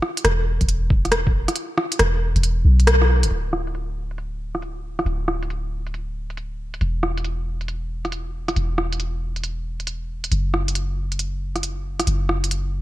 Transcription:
0.02 cross-stick
0.17 closed hi-hat
0.24 808-style bass E1, cross-stick, closed hi-hat
0.61 808-style bass E1, kick, closed hi-hat
0.69 closed hi-hat
0.90 kick
1.05 cross-stick, closed hi-hat
1.12 cross-stick, closed hi-hat
1.27 kick
1.48 cross-stick, closed hi-hat
1.56 closed hi-hat
1.78 cross-stick
1.92 closed hi-hat
1.99 808-style bass E1, cross-stick, closed hi-hat
2.35 808-style bass E1, closed hi-hat
2.43 closed hi-hat
2.65 808-style bass B1
2.80 closed hi-hat
2.87 cross-stick, closed hi-hat
3.02 cross-stick
3.23 808-style bass E1, closed hi-hat
3.31 808-style bass D1, closed hi-hat
3.53 cross-stick
3.67 closed hi-hat
3.75 closed hi-hat
4.11 closed hi-hat
4.18 closed hi-hat
4.55 cross-stick, closed hi-hat
4.62 closed hi-hat
4.99 cross-stick, closed hi-hat
5.05 808-style bass D1, closed hi-hat
5.28 cross-stick
5.43 closed hi-hat
5.50 closed hi-hat
5.87 closed hi-hat
5.94 closed hi-hat
6.30 closed hi-hat
6.37 closed hi-hat
6.74 closed hi-hat
6.81 808-style bass E1, closed hi-hat
7.03 cross-stick
7.18 closed hi-hat
7.25 closed hi-hat
7.61 closed hi-hat
7.68 closed hi-hat
8.05 cross-stick, closed hi-hat
8.12 closed hi-hat
8.48 cross-stick, closed hi-hat
8.56 808-style bass E1, closed hi-hat
8.78 cross-stick
8.93 closed hi-hat
9.00 closed hi-hat
9.36 closed hi-hat
9.44 closed hi-hat
9.80 closed hi-hat
9.87 closed hi-hat
10.24 closed hi-hat
10.31 808-style bass F#1, closed hi-hat
10.54 cross-stick
10.68 closed hi-hat
10.75 closed hi-hat
11.12 closed hi-hat
11.19 closed hi-hat
11.56 cross-stick, closed hi-hat
11.63 closed hi-hat
12.00 cross-stick, closed hi-hat
12.07 808-style bass F#1, closed hi-hat
12.29 cross-stick
12.44 closed hi-hat
12.51 closed hi-hat

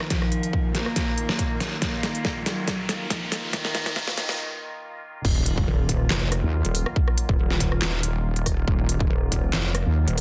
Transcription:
Already playing: ambient pad D#3 A#3 D#4 F4 A#4, riser
0.00 cross-stick
0.10 cello F3, kick, snare, closed hi-hat
0.22 cross-stick
0.32 closed hi-hat
0.43 closed hi-hat
0.53 kick
0.75 cello A#3, snare, closed hi-hat
0.86 cross-stick
0.96 kick, snare, closed hi-hat
1.18 closed hi-hat
1.29 snare
1.39 kick, closed hi-hat
1.60 cross-stick, snare, open hi-hat
1.82 cello A#3, kick, snare, closed hi-hat
2.03 snare, closed hi-hat
2.15 closed hi-hat
2.25 kick, snare
2.46 cello F#3, snare, closed hi-hat
2.68 kick, snare, closed hi-hat
2.89 snare, closed hi-hat
3.10 cello F3, kick, snare, closed hi-hat
3.32 snare, open hi-hat
3.53 cello D#3, kick, snare, closed hi-hat
3.65 snare
3.75 snare, closed hi-hat
3.86 snare, closed hi-hat
3.96 kick, snare
4.08 snare
4.18 cello D#3, snare, closed hi-hat
4.29 snare
5.25 wobble bass D#1, ambient pad D#3 F#3 A#3 F4, kick, crash, impact
5.46 closed hi-hat
5.58 kick
5.68 wobble bass D#1
5.89 kick, closed hi-hat
6.10 wobble bass F1, snare, clap
6.32 cross-stick, closed hi-hat
6.43 wobble bass D#2
6.65 wobble bass D#1, closed hi-hat
6.75 open hi-hat
6.86 cross-stick
6.96 kick
7.08 cross-stick
7.18 closed hi-hat
7.29 wobble bass D#1, kick
7.39 wobble bass D#1
7.50 snare
7.60 kick, closed hi-hat
7.72 cross-stick
7.82 wobble bass D#1, snare, clap
8.03 closed hi-hat
8.36 closed hi-hat
8.46 kick, cross-stick, open hi-hat
8.68 wobble bass D#1, kick
8.89 closed hi-hat
9.00 kick
9.10 wobble bass D#1
9.32 kick, closed hi-hat
9.53 wobble bass F1, snare, clap
9.75 cross-stick, closed hi-hat
9.86 wobble bass D#2
10.08 wobble bass D#1, closed hi-hat
10.18 open hi-hat

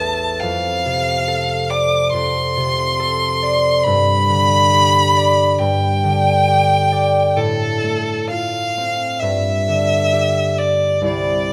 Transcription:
Already playing: harp A1 E2 A4, violin A5
0.00 harp E5
0.40 harp F2, violin F5
0.86 harp C3
1.28 harp A4
1.70 harp D5, violin D6
2.13 harp F2, violin C6
2.57 harp C3
2.99 harp A4
3.42 harp D5
3.84 harp G2, violin B5
4.29 harp D3
4.73 harp G4
5.17 harp D5
5.58 harp G2, violin G5
6.04 harp D3
6.48 harp G4
6.92 harp D5
7.36 harp A2, violin A4
7.84 harp A3
8.31 harp F4, violin F5
8.77 harp C4
9.20 harp G2, violin E5
9.68 harp D3
10.13 harp G4
10.58 violin D5, harp D5
11.02 harp C2 E4 G4 C5
11.06 violin D5

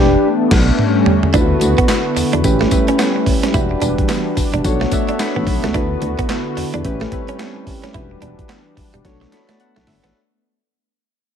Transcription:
Already playing: fm bass E1, analog synth pad E3 D4 G4, synth keys D4 G4 B4
0.24 analog synth pad A3 B3
0.51 fm bass B1, kick, snare, crash
0.79 analog synth pad G3 C#4, mid tom
1.06 floor tom
1.23 floor tom
1.34 fm bass D2, analog synth pad D3 B3 F#4, clean electric guitar D4, synth keys E4 F4 A4 B4, kick, closed hi-hat, tambourine
1.41 synth keys F#4
1.61 fm bass D2, muted clean electric guitar stroke, closed hi-hat, tambourine
1.78 clean electric guitar B3, kick, closed hi-hat
1.88 clean electric guitar B3, snare, clap, closed hi-hat, tambourine
2.16 fm bass E2, muted clean electric guitar stroke, open hi-hat, tambourine
2.33 fm bass E2, clean electric guitar D4, closed hi-hat
2.44 fm bass A1, analog synth pad G3 A3 C#4, synth keys C#4 E4 G4 B4, kick, closed hi-hat, tambourine
2.61 clean electric guitar A3, snare
2.71 synth keys C#4 E4 G4 B4, muted clean electric guitar stroke, kick, closed hi-hat, tambourine
2.88 clean electric guitar C#4, closed hi-hat
2.99 clean electric guitar B3, snare, clap, closed hi-hat, tambourine
3.16 muted clean electric guitar stroke
3.26 kick, open hi-hat
3.43 clean electric guitar C#4, snare, closed hi-hat
3.54 fm bass E1, analog synth pad E3 D4, synth keys D4 F#4 G4 B4, clean electric guitar E4, kick, closed hi-hat, tambourine
3.71 muted clean electric guitar stroke
3.82 fm bass E1, clean electric guitar D4, closed hi-hat, tambourine
3.98 kick, closed hi-hat
4.09 clean electric guitar B3, snare, clap, closed hi-hat, tambourine
4.37 fm bass E1, muted clean electric guitar stroke, kick, open hi-hat, tambourine
4.54 fm bass E1, clean electric guitar D4, closed hi-hat
4.64 fm bass B1, analog synth pad A3 B3, synth keys D4 F#4 A4 C#5, kick, closed hi-hat, tambourine
4.81 clean electric guitar A3, snare
4.91 synth keys D4 F#4 A4 E5 F#5, muted clean electric guitar stroke, kick, closed hi-hat, tambourine
5.08 clean electric guitar D4, closed hi-hat
5.19 synth keys B5, snare, clap, closed hi-hat, tambourine
5.36 fm bass A1, clean electric guitar B3
5.47 fm bass B1, muted clean electric guitar stroke, kick, open hi-hat
5.64 fm bass C#2, clean electric guitar A3, snare, closed hi-hat
5.74 fm bass D2, analog synth pad D3 F#4, clean electric guitar D4, synth keys E4 F#4 A4 B4, kick, closed hi-hat
6.02 fm bass D2, muted clean electric guitar stroke, closed hi-hat
6.19 clean electric guitar B3, kick, closed hi-hat
6.29 clean electric guitar B3, snare, clap, closed hi-hat
6.57 fm bass E2, muted clean electric guitar stroke, open hi-hat
6.74 fm bass E2, clean electric guitar D4, closed hi-hat
6.85 fm bass A1, analog synth pad G3 A3 C#4, synth keys C#4 E4 G4 B4, kick, closed hi-hat
7.01 clean electric guitar A3, snare
7.12 synth keys C4 E4 G4 B4, muted clean electric guitar stroke, kick, closed hi-hat
7.19 synth keys C#4
7.28 clean electric guitar C#4, closed hi-hat
7.39 clean electric guitar B3, snare, clap, closed hi-hat
7.56 muted clean electric guitar stroke
7.67 kick, open hi-hat
7.84 clean electric guitar C#4, snare, closed hi-hat
7.94 fm bass E1, analog synth pad E3 D4, synth keys D4 F#4 G4 B4, clean electric guitar E4, kick, closed hi-hat
8.11 muted clean electric guitar stroke
8.22 fm bass E1, clean electric guitar D4, closed hi-hat
8.39 kick, closed hi-hat
8.49 clean electric guitar B3, snare, clap, closed hi-hat
8.77 fm bass E1, muted clean electric guitar stroke, kick, open hi-hat
8.94 fm bass E1, clean electric guitar G3, closed hi-hat
9.05 fm bass B1, analog synth pad A3 B3, synth keys D4 F#4 A4 C#5, kick, snare, closed hi-hat
9.21 clean electric guitar F#3, snare
9.32 synth keys D4 F#4 A4 C#5 B5, muted clean electric guitar stroke, snare, closed hi-hat
9.49 clean electric guitar A3, synth keys A5, snare, closed hi-hat
9.60 synth keys F#5, closed hi-hat
9.76 fm bass B1, clean electric guitar A3, snare
9.87 fm bass G1, synth keys E5, muted clean electric guitar stroke, snare, open hi-hat
10.04 fm bass A1, clean electric guitar B3, snare, closed hi-hat

